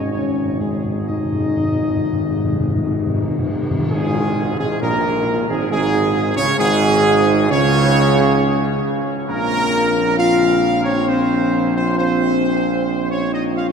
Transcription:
Already playing: tuba G#1, french horn section C#4
0.05 timpani G#2
0.11 timpani G#2, trombone section C#3 G#3, french horn section C#4, trumpet section C#5
0.21 timpani G#2
0.28 timpani G#2
0.37 timpani G#2
0.45 timpani G#2
0.52 timpani G#2
0.59 timpani G#2, french horn section G#3, trumpet section G#4
0.69 timpani G#2
0.76 timpani G#2
0.85 timpani G#2
0.92 timpani G#2
1.01 timpani G#2
1.08 timpani G#2, trombone section C#3 G#3, french horn section D#4, trumpet section D#5
1.17 timpani G#2
1.24 timpani G#2
1.32 timpani G#2
1.40 timpani G#2
1.49 timpani G#2
1.57 timpani G#2
1.64 timpani G#2
1.72 timpani G#2
1.80 timpani G#2
1.88 timpani G#2
1.96 timpani G#2
2.05 timpani G#2
2.13 timpani G#2
2.21 timpani G#2
2.29 timpani G#2
2.37 timpani G#2
2.45 timpani G#2
2.52 timpani G#2
2.60 timpani G#2
2.68 timpani G#2
2.76 timpani G#2
2.84 timpani G#2
2.91 timpani G#2
2.99 timpani G#2
3.06 timpani G#2
3.14 timpani G#2
3.22 timpani G#2
3.30 timpani G#2
3.39 timpani G#2
3.46 timpani G#2
3.54 timpani G#2
3.62 timpani G#2
3.71 timpani G#2
3.79 timpani G#2
3.91 tuba G#1, trombone section G#2, timpani C#3, french horn section G#3, trumpet section G#4, tam-tam
4.58 tuba G#1, trombone section G#2, french horn section G#3, trumpet section G#4
4.81 tuba A#1, trombone section A#2, french horn section A#3, trumpet section A#4
5.48 tuba G#1, trombone section G#2, french horn section G#3, trumpet section G#4
5.70 tuba G#1, trombone section G#2, french horn section G#3, trumpet section G#4
6.35 tuba C#2, trombone section C#3, french horn section C#4, trumpet section C#5
6.58 tuba G#1, trombone section G#2, french horn section G#3, trumpet section G#4
7.49 tuba C#2, trombone section C#3, french horn section C#4, trumpet section C#5
9.28 tuba A#1, trombone section F3 C4, french horn section A#3, trumpet section A#4
10.17 french horn section F4, trumpet section F5
10.84 french horn section C#4, trumpet section C#5
11.07 french horn section C4, trumpet section C5
11.75 french horn section C4, trumpet section C5
11.97 french horn section C4, trumpet section C5
13.10 french horn section C#4, trumpet section C#5
13.33 french horn section D#4, trumpet section D#5
13.54 french horn section F4, trumpet section F5

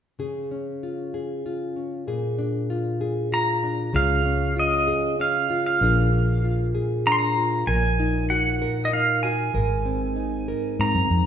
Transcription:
0.19 nylon-string guitar C#3 G#4
0.51 nylon-string guitar C#4
0.83 nylon-string guitar F4
1.14 nylon-string guitar G#4
1.46 nylon-string guitar F4
1.76 nylon-string guitar C#4
2.07 nylon-string guitar A#2 G#4
2.38 nylon-string guitar D4
2.70 nylon-string guitar F4
3.01 nylon-string guitar G#4
3.32 nylon-string guitar F4, pedal steel guitar A#5
3.63 nylon-string guitar D4
3.93 fingered electric bass C#2, nylon-string guitar C#3 G#3 C#4 F4 G#4, pedal steel guitar F5
4.25 nylon-string guitar C#4
4.56 nylon-string guitar F4, pedal steel guitar D#5
4.88 nylon-string guitar G#4
5.19 nylon-string guitar C#4, pedal steel guitar F5
5.50 nylon-string guitar F4
5.66 pedal steel guitar F5
5.81 fingered electric bass A#1, nylon-string guitar A#2 A#3 D4 F4 G#4
6.13 nylon-string guitar D4
6.44 nylon-string guitar F4
6.75 nylon-string guitar G#4
7.06 nylon-string guitar D4, pedal steel guitar A#5
7.12 pedal steel guitar C6
7.19 pedal steel guitar A#5
7.37 nylon-string guitar F4
7.67 fingered electric bass A#1, nylon-string guitar A#2 A#4, pedal steel guitar G#5
8.00 nylon-string guitar D#4
8.30 nylon-string guitar F#4, pedal steel guitar F#5
8.62 nylon-string guitar A#4
8.85 pedal steel guitar D#5
8.93 nylon-string guitar D#4, pedal steel guitar F5
9.23 nylon-string guitar F#4, pedal steel guitar G#5
9.54 fingered electric bass G#1, nylon-string guitar G#2 A#4
9.86 nylon-string guitar C4
10.16 nylon-string guitar D#4
10.48 nylon-string guitar A#4
10.79 fingered electric bass G#2, nylon-string guitar C4, pedal steel guitar A#5
10.95 fingered electric bass F#2
11.10 fingered electric bass F2, nylon-string guitar D#4

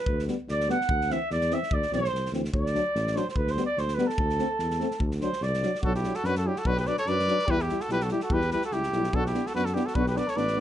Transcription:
Already playing: flugelhorn B4
0.06 tuba D2, kick
0.19 snare
0.27 trombone G3, euphonium B3, snare
0.48 tuba D2, flugelhorn D5, snare
0.60 snare
0.68 trombone G3, euphonium B3, flugelhorn F#5, snare
0.81 snare
0.89 tuba D2, kick
1.01 snare
1.10 trombone E3, euphonium C4, flugelhorn E5, snare
1.31 tuba E2, flugelhorn D5, snare
1.41 snare
1.50 trombone E3, euphonium C4, flugelhorn E5, snare
1.63 snare
1.71 tuba D2, flugelhorn D5, kick
1.82 snare
1.92 tuba B1, trombone E3, euphonium C4, flugelhorn C5, snare
2.04 snare
2.12 tuba C2, snare
2.26 snare
2.32 tuba D2, trombone E3, euphonium C4, snare
2.45 snare
2.53 tuba D2, flugelhorn D5, kick
2.66 snare
2.73 trombone F#3, euphonium D4, snare
2.94 tuba A1, snare
3.07 snare
3.15 trombone F#3, euphonium D4, flugelhorn C5, snare
3.29 flugelhorn C5, snare
3.35 tuba D2, flugelhorn B4, kick
3.47 flugelhorn C5, snare
3.57 trombone G3, euphonium B3, snare
3.66 flugelhorn D5
3.77 tuba D2, flugelhorn C5, snare
3.88 snare
3.94 trombone G3, euphonium B3, flugelhorn B4, snare
4.07 flugelhorn A4, snare
4.18 tuba D2, kick
4.29 snare
4.39 trombone A3, euphonium C4, snare
4.59 tuba E2, snare
4.70 snare
4.80 trombone A3, euphonium C4, snare
4.91 snare
5.00 tuba D2, kick
5.11 snare
5.21 trombone F#3, euphonium D4, flugelhorn C5, snare
5.33 snare
5.41 tuba C2, flugelhorn D5, snare
5.54 snare
5.62 trombone F#3, euphonium D4, snare
5.75 snare
5.82 tuba B1, trombone F#3, euphonium D4, flugelhorn F#4, trumpet A4, kick
5.95 flugelhorn E4, trumpet G4, snare
6.04 trombone F#3, euphonium D4, snare
6.14 flugelhorn F#4, trumpet A4, snare
6.23 tuba F#2, trombone F#3, euphonium D4, flugelhorn F#4, trumpet B4, snare
6.35 flugelhorn F#4, trumpet A4, snare
6.45 trombone F#3, euphonium D4, flugelhorn E4, trumpet G4
6.56 flugelhorn F#4, trumpet A4, snare
6.64 tuba B1, trombone F#3, euphonium D4, flugelhorn F#4, trumpet B4, kick
6.76 flugelhorn G4, trumpet B4, snare
6.85 trombone F#3, euphonium D4, flugelhorn B4, trumpet D5, snare
6.97 flugelhorn A4, trumpet C#5, snare
7.06 tuba F#2, trombone F#3, euphonium D4, flugelhorn B4, trumpet D5, snare
7.19 snare
7.27 trombone F#3, euphonium D4, snare
7.39 snare
7.46 tuba E2, trombone G3, euphonium E4, flugelhorn G4, kick
7.51 trumpet B4
7.59 flugelhorn E4, trumpet G4, snare
7.69 trombone G3, euphonium E4, snare
7.80 flugelhorn F#4, trumpet A4, snare
7.89 tuba B1, trombone G3, euphonium E4, flugelhorn G4, trumpet B4, snare
8.00 trumpet A4, snare
8.04 flugelhorn F#4
8.08 trombone G3, euphonium E4, flugelhorn E4, trumpet G4, snare
8.20 flugelhorn F#4, trumpet A4, snare
8.30 tuba E2, trombone G3, euphonium E4, flugelhorn G4, trumpet B4, kick
8.41 snare
8.51 trombone G3, euphonium E4, flugelhorn G4, trumpet B4, snare
8.62 flugelhorn F#4, trumpet A4, snare
8.71 tuba C#2, trombone G3, euphonium E4, flugelhorn E4, trumpet G4, snare
8.83 snare
8.91 tuba B1, euphonium E4, snare
8.95 trombone G3
9.04 snare
9.12 tuba B1, trombone B3, euphonium D4, flugelhorn F#4, trumpet A4, kick
9.26 flugelhorn E4, trumpet G4, snare
9.34 trombone B3, euphonium D4, snare
9.46 flugelhorn F#4, trumpet A4, snare
9.54 tuba F#2, trombone B3, euphonium D4, flugelhorn F#4, trumpet B4, snare
9.65 flugelhorn F#4, trumpet A4, snare
9.74 trombone B3, euphonium D4, flugelhorn E4, trumpet G4, snare
9.86 flugelhorn F#4, trumpet A4, snare
9.95 tuba B1, trombone B3, euphonium D4, flugelhorn F#4, trumpet B4, kick
10.07 flugelhorn G4, trumpet B4, snare
10.15 trombone B3, euphonium D4, flugelhorn B4, trumpet D5, snare
10.27 flugelhorn A4, trumpet C#5, snare
10.36 tuba A1, trombone B3, euphonium D4, flugelhorn B4, trumpet D5, snare
10.47 snare
10.55 trombone B3, euphonium D4

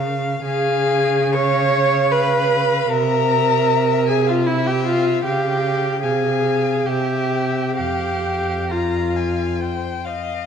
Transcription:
Already playing: cello C#3, violin F5
0.44 cello C#3, viola G#4, violin F5 G#5
1.32 viola C#5, violin F5 C#6
2.11 viola B4, violin F5 B5
2.89 cello C3, viola A#4, violin E5 A#5
4.08 viola G#4, violin G#5
4.27 viola F4, violin F5
4.47 viola E4, violin E5
4.66 viola G4, violin G5
4.84 viola F4, violin F5
5.24 cello C#3, viola G4, violin F5 G5
6.03 cello C3, viola G#4, violin F5 G#5
6.86 cello C3, viola G4, violin E5 G5
7.77 cello F2, viola G4, violin F5 G5
8.70 viola F4, violin F5 A#5
9.15 violin G#5
9.61 violin C5 G5
10.05 violin D#5 F5

